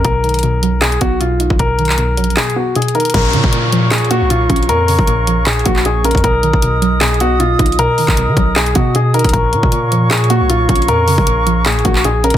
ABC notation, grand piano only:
X:1
M:4/4
L:1/8
Q:1/4=155
K:Bbphr
V:1 name="Grand piano"
B4 A ^F =F2 | B4 A ^F A B | B4 A G F2 | B4 A G A B |
B4 A ^F =F2 | B4 A ^F A B | B4 A G F2 | B4 A G A B |]